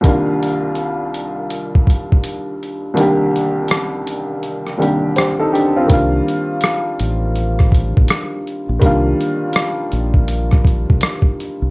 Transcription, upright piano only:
X:1
M:4/4
L:1/16
Q:"Swing 16ths" 1/4=82
K:Cdor
V:1 name="Upright piano"
z16 | z12 [Gc] [EA] [DG] [CF]- | [CF] z12 z3 | z16 |]
V:2 name="Upright piano"
[C,,E,G,B,DF]16 | [C,,E,G,B,DG]8- [C,,E,G,B,DG]2 [C,,E,G,B,DG]6 | [E,G,B,DF]16 | [E,G,B,DF]16 |]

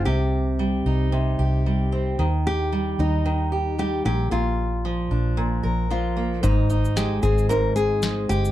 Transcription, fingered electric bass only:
X:1
M:4/4
L:1/8
Q:"Swing 16ths" 1/4=113
K:Ablyd
V:1 name="Fingered electric bass" clef=bass
C,,3 C,,2 C,,3 | E,,3 E,,4 B,,, | B,,,3 B,,,2 B,,,3 | A,,,3 A,,,4 G,,, |]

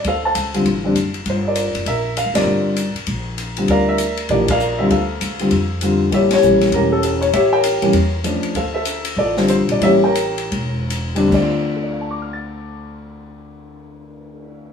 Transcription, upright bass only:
X:1
M:4/4
L:1/8
Q:"Swing" 1/4=197
K:Dm
V:1 name="Upright bass" clef=bass
D,,2 ^C,,2 A,,,2 ^F,,,2 | G,,,3 ^F,,, B,,,2- (3B,,, D,, A,,, | G,,,3 z B,,,4 | D,,4 B,,,4 |
D,,2 ^C,,2 F,,4 | A,,,2 B,,,2 E,,,4 | A,,,3 B,,, E,,3 z | D,,4 A,,,3 B,,, |
A,,,4 E,,,4 | D,,8- | D,,8 |]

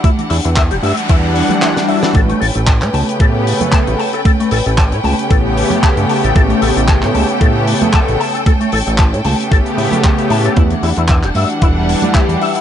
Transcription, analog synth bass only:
X:1
M:4/4
L:1/16
Q:"Swing 16ths" 1/4=114
K:Amix
V:1 name="Analog synth bass" clef=bass
z2 E,, E,,2 E,,, G,, z E,,2 z6 | A,,, z A,,, A,,,2 A,, C,, z A,,2 z3 A,,, z2 | z2 A,,, A,,,2 A,, C,, z A,,,2 z3 G,, z A,,, | A,,, z A,,, A,,,2 A,, C,, z A,,2 z3 A,,, z2 |
z2 A,,, A,,,2 A,, C,, z A,,, z A,, z3 A,, z | E,, z E,, E,,2 E,,, G,, z E,,,2 z3 E,, z2 |]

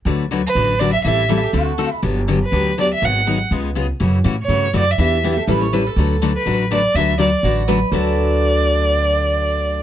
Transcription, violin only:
X:1
M:4/4
L:1/8
Q:"Swing" 1/4=245
K:D
V:1 name="Violin"
z3 B3 d e | e3 z4 z | z3 B3 d e | f3 z4 z |
z3 c3 d e | e3 z4 z | z3 B2 z d2 | e2 d2 z4 |
d8- | d8 |]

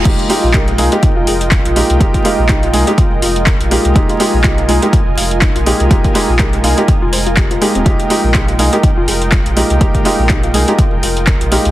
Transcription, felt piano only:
X:1
M:4/4
L:1/16
Q:"Swing 16ths" 1/4=123
K:Fm
V:1 name="Felt piano"
[A,B,EG]2 [A,B,EG] z [A,B,EG] z [A,B,EA] [A,B,EG] z6 [A,B,EG]2 | [A,B,EG]2 [A,B,EG] z [A,B,EG] z [A,B,EA] [A,B,EG] z6 [A,B,EG]2 | [A,B,EG]2 [A,B,EG] z [A,B,EG] z [A,B,EA] [A,B,EG] z6 [A,B,EG]2 | [A,B,EG]2 [A,B,EG] z [A,B,EG] z [A,B,EA] [A,B,EG] z6 [A,B,EG]2 |
[A,B,EG]2 [A,B,EG] z [A,B,EG] z [A,B,EA] [A,B,EG] z6 [A,B,EG]2 | [A,B,EG]2 [A,B,EG] z [A,B,EG] z [A,B,EA] [A,B,EG] z6 [A,B,EG]2 |]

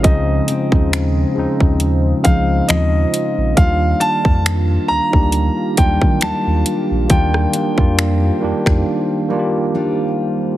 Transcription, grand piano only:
X:1
M:4/4
L:1/8
Q:"Swing 16ths" 1/4=68
K:Ebdor
V:1 name="Grand piano"
e4 z f e2 | f =a2 b2 =g a2 | =g4 z4 |]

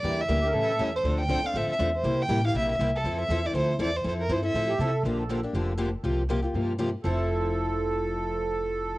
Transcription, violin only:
X:1
M:4/4
L:1/8
Q:"Swing" 1/4=240
K:F
V:1 name="Violin"
d e6 c- | c g2 f e e z c- | c g2 f e e z A- | A e2 d c2 d c |
c B c e4 z | z8 | z8 | z8 |
z8 |]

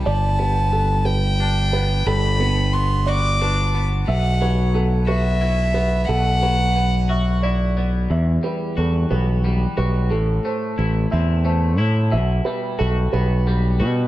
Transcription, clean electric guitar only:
X:1
M:6/8
L:1/8
Q:3/8=60
K:Em
V:1 name="Clean electric guitar"
G, B, B,2 D B, | G, B, B, F D B, | B,, F, B, F E B, | B,, F, B, F E B, |
E,, G, F B, G, F | A,, A, E C A, E | B,, G, F B, G, F |]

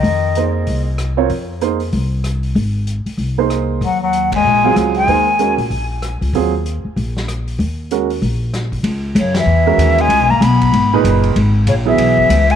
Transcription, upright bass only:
X:1
M:4/4
L:1/8
Q:"Swing" 1/4=191
K:Ebdor
V:1 name="Upright bass" clef=bass
F,,4 C,,4 | F,,4 C,,4 | A,,,3 z C,,4 | E,,4 B,,,2 D,,2 |
E,,3 B,, B,,,3 D,, | E,,3 z B,,,4 | E,,4 B,,,4 | [K:C#dor] C,,2 F,,2 E,,2 D,,2 |
(3C,, B,,, G,,, B,,,2 G,,,2 F,,,2 | G,,,2 A,,,2 B,,,2 C,,2 |]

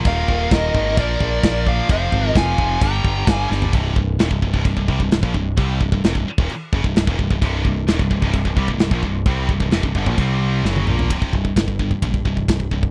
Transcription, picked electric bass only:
X:1
M:4/4
L:1/16
Q:1/4=130
K:Cm
V:1 name="Picked electric bass" clef=bass
E,,,2 E,,,2 E,,,2 A,,,2 B,,,2 B,,,2 B,,,4 | F,,,2 A,,,2 F,,,2 F,,,2 G,,,2 G,,,2 G,,,2 G,,,2 | C,,,2 C,,,2 E,,, C,,, C,,, C,,, C,,, C,,, C,, C,,, C,,, B,,, C,,,2 | C,,2 C,,, C,,, F,,, C,,, z E,,, z2 ^F,,, C,,, C,,, E,,, C,,, C,,, |
C,,,2 C,,,2 E,,, C,,, C,,, C,,, C,,, C,,, C,, C,,, C,,, B,,, C,,,2 | C,,2 C,,, C,,, F,,, C,,, G,,, B,,, C,,4 ^F,,,2 B,,,2 | C,,,2 C,,,2 G,,,4 B,,,2 C,,,2 C,,,2 C,,,2 |]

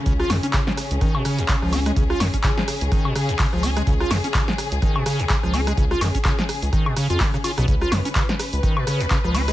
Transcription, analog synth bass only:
X:1
M:4/4
L:1/16
Q:"Swing 16ths" 1/4=126
K:Dbmix
V:1 name="Analog synth bass" clef=bass
D,, z G,, z4 D,, z4 z D,,3 | D,, z G,, z4 D,, z4 z D,,3 | D,, z G,, z4 D,, z4 z D,,3 | D,, z G,, z4 D,, z3 F,, z3 C,, |
D,, z G,, z4 D,, z4 z D,,3 |]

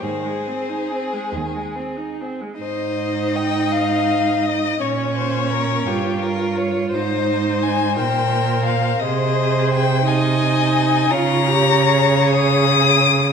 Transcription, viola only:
X:1
M:6/8
L:1/16
Q:3/8=55
K:Ab
V:1 name="Viola"
E, A, C E C A, E, A, C E C A, | E12 | D6 F6 | E6 B6 |
A6 E6 | F2 G2 A8 |]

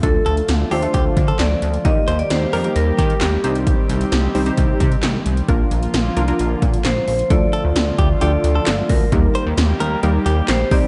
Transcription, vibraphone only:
X:1
M:4/4
L:1/16
Q:1/4=132
K:Dphr
V:1 name="Vibraphone"
A4 z2 c6 d4 | e3 d c4 B4 G3 z | z16 | z12 c2 c2 |
d8 d6 B2- | B2 z8 z2 c2 d2 |]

